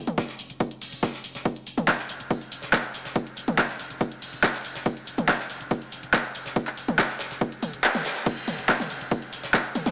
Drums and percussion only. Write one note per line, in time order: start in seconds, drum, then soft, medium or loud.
0.07 closed hi-hat medium
0.07 mid tom loud
0.07 shaker soft
0.18 kick loud
0.18 snare loud
0.18 closed hi-hat medium
0.18 shaker soft
0.18 shaker medium
0.28 snare soft
0.28 open hi-hat medium
0.28 shaker soft
0.39 open hi-hat loud
0.39 shaker medium
0.50 closed hi-hat medium
0.50 shaker soft
0.60 kick loud
0.60 closed hi-hat medium
0.60 shaker soft
0.60 shaker medium
0.71 closed hi-hat medium
0.71 shaker soft
0.81 open hi-hat medium
0.81 open hi-hat loud
0.81 shaker medium
0.92 closed hi-hat medium
0.92 shaker soft
1.03 kick loud
1.03 snare loud
1.03 closed hi-hat medium
1.03 shaker soft
1.03 shaker medium
1.14 snare medium
1.14 closed hi-hat medium
1.14 shaker soft
1.24 open hi-hat loud
1.24 shaker medium
1.35 snare medium
1.35 closed hi-hat medium
1.35 shaker soft
1.45 kick loud
1.45 closed hi-hat medium
1.45 shaker soft
1.45 shaker medium
1.56 closed hi-hat soft
1.56 shaker soft
1.67 open hi-hat loud
1.67 shaker medium
1.78 closed hi-hat medium
1.78 mid tom medium
1.78 shaker soft
1.88 kick loud
1.88 snare loud
1.88 clap loud
1.88 closed hi-hat medium
1.88 shaker soft
1.88 shaker medium
1.99 snare medium
1.99 closed hi-hat soft
1.99 shaker soft
2.09 open hi-hat loud
2.09 shaker medium
2.20 closed hi-hat soft
2.20 shaker soft
2.31 kick loud
2.31 closed hi-hat medium
2.31 shaker soft
2.31 shaker medium
2.41 open hi-hat medium
2.41 shaker soft
2.52 open hi-hat loud
2.52 shaker medium
2.62 snare medium
2.62 closed hi-hat medium
2.62 shaker soft
2.73 kick loud
2.73 snare loud
2.73 clap loud
2.73 closed hi-hat medium
2.73 shaker soft
2.73 shaker medium
2.84 closed hi-hat medium
2.84 shaker soft
2.94 open hi-hat loud
2.94 shaker medium
3.05 snare medium
3.05 closed hi-hat medium
3.05 shaker soft
3.15 kick loud
3.15 closed hi-hat medium
3.15 shaker medium
3.15 shaker soft
3.27 closed hi-hat medium
3.27 shaker soft
3.37 open hi-hat loud
3.37 shaker medium
3.48 closed hi-hat soft
3.48 mid tom medium
3.48 shaker soft
3.58 kick loud
3.58 snare loud
3.58 clap loud
3.58 closed hi-hat medium
3.58 shaker medium
3.58 shaker soft
3.69 snare soft
3.69 open hi-hat medium
3.69 shaker soft
3.79 open hi-hat loud
3.79 shaker medium
3.90 closed hi-hat soft
3.90 shaker soft
4.01 kick loud
4.01 closed hi-hat medium
4.01 shaker medium
4.01 shaker soft
4.12 closed hi-hat medium
4.12 shaker soft
4.22 open hi-hat medium
4.22 open hi-hat loud
4.22 shaker medium
4.33 closed hi-hat soft
4.33 shaker soft
4.43 kick loud
4.43 snare loud
4.43 clap loud
4.43 closed hi-hat medium
4.43 shaker soft
4.43 shaker medium
4.54 snare medium
4.54 closed hi-hat medium
4.54 shaker soft
4.64 open hi-hat loud
4.64 shaker medium
4.75 snare medium
4.75 closed hi-hat soft
4.75 shaker soft
4.85 kick loud
4.85 closed hi-hat medium
4.85 shaker medium
4.85 shaker soft
4.97 closed hi-hat medium
4.97 shaker soft
5.06 open hi-hat loud
5.06 shaker medium
5.18 closed hi-hat soft
5.18 mid tom medium
5.18 shaker soft
5.28 kick loud
5.28 snare loud
5.28 clap loud
5.28 closed hi-hat medium
5.28 shaker soft
5.28 shaker medium
5.39 snare medium
5.39 closed hi-hat medium
5.39 shaker soft
5.50 open hi-hat loud
5.50 shaker medium
5.61 closed hi-hat soft
5.61 shaker soft
5.71 kick loud
5.71 closed hi-hat medium
5.71 shaker soft
5.71 shaker loud
5.82 open hi-hat medium
5.82 shaker soft
5.92 open hi-hat loud
5.92 shaker medium
6.03 closed hi-hat medium
6.03 shaker soft
6.13 kick loud
6.13 snare loud
6.13 clap loud
6.13 closed hi-hat medium
6.13 shaker soft
6.13 shaker medium
6.24 closed hi-hat medium
6.24 shaker soft
6.35 open hi-hat loud
6.35 shaker medium
6.46 snare medium
6.46 closed hi-hat medium
6.46 shaker soft
6.56 kick loud
6.56 closed hi-hat medium
6.56 shaker medium
6.56 shaker soft
6.67 clap soft
6.67 closed hi-hat medium
6.67 shaker soft
6.77 open hi-hat loud
6.77 shaker medium
6.88 closed hi-hat medium
6.88 mid tom medium
6.88 shaker soft
6.98 kick loud
6.98 snare loud
6.98 clap loud
6.98 closed hi-hat medium
6.98 shaker medium
6.98 shaker soft
7.09 snare soft
7.09 open hi-hat medium
7.09 shaker soft
7.19 snare loud
7.19 open hi-hat loud
7.19 shaker medium
7.31 snare soft
7.31 closed hi-hat medium
7.31 shaker soft
7.41 kick loud
7.41 closed hi-hat medium
7.41 shaker medium
7.41 shaker soft
7.52 closed hi-hat medium
7.52 shaker soft
7.63 open hi-hat loud
7.63 mid tom medium
7.63 shaker medium
7.73 closed hi-hat medium
7.73 shaker soft
7.84 snare loud
7.84 clap loud
7.84 closed hi-hat medium
7.84 shaker soft
7.84 shaker medium
7.95 snare medium
7.95 closed hi-hat medium
7.95 mid tom medium
7.95 shaker soft
8.05 snare loud
8.05 open hi-hat loud
8.05 shaker medium
8.16 snare soft
8.16 closed hi-hat medium
8.16 shaker soft
8.26 kick loud
8.26 closed hi-hat medium
8.26 crash loud
8.26 shaker loud
8.26 shaker soft
8.37 closed hi-hat medium
8.37 shaker soft
8.48 open hi-hat loud
8.48 mid tom medium
8.48 shaker medium
8.59 closed hi-hat medium
8.59 shaker soft
8.68 kick loud
8.68 snare loud
8.68 clap loud
8.68 closed hi-hat medium
8.68 shaker medium
8.68 shaker soft
8.80 snare medium
8.80 closed hi-hat medium
8.80 mid tom medium
8.80 shaker soft
8.90 open hi-hat loud
8.90 shaker medium
9.01 closed hi-hat medium
9.01 shaker soft
9.11 kick loud
9.11 closed hi-hat medium
9.11 shaker soft
9.11 shaker medium
9.22 open hi-hat medium
9.22 shaker soft
9.32 open hi-hat loud
9.32 shaker medium
9.43 snare medium
9.43 closed hi-hat medium
9.43 shaker soft
9.53 kick loud
9.53 snare loud
9.53 clap loud
9.53 closed hi-hat medium
9.53 shaker medium
9.53 shaker soft
9.65 closed hi-hat medium
9.65 shaker soft
9.75 open hi-hat loud
9.75 mid tom medium
9.75 shaker medium
9.85 snare medium
9.85 closed hi-hat medium
9.85 mid tom medium
9.85 shaker soft